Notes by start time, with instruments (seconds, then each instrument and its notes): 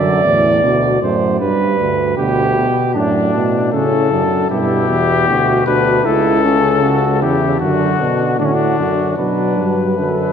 Already playing: euphonium F#2, trombone D3, flugelhorn D5
0.24 euphonium E2, trombone A2
0.62 euphonium D2, trombone B2
1.02 euphonium F#2, trombone A2, flugelhorn C5
1.40 trombone G2, euphonium G2, flugelhorn B4
1.79 euphonium D2
2.17 euphonium D2, trombone B2, flugelhorn G4
2.57 trombone B2
2.94 euphonium F#2, trombone A2, flugelhorn D4, trumpet D4
3.34 euphonium B2
3.72 euphonium A2, trombone C#3, flugelhorn C#4, trumpet A4
4.11 euphonium F#2, flugelhorn D4
4.50 euphonium G2, trombone B2, flugelhorn E4, trumpet G4
4.89 euphonium E2
5.28 euphonium D2, trombone B2, flugelhorn F#4
5.66 euphonium D2, flugelhorn D4, trumpet B4
6.04 euphonium C#2, trombone C#3, flugelhorn E4, trumpet A4
6.44 flugelhorn C#4
6.82 euphonium C#2, flugelhorn F#4
7.22 euphonium E2, flugelhorn E4, trumpet G4
7.60 euphonium F#2, trombone D3, flugelhorn D4, trumpet F#4
8.00 euphonium B2
8.39 euphonium A2, trombone D3, trumpet D4, flugelhorn F#4
8.46 trumpet C#4
8.54 trumpet D4
8.79 euphonium F#2, flugelhorn F#4
9.17 euphonium B2, trombone F#3, flugelhorn D4, trumpet B4
9.58 euphonium G2
9.97 euphonium F#2, trombone D3, flugelhorn A4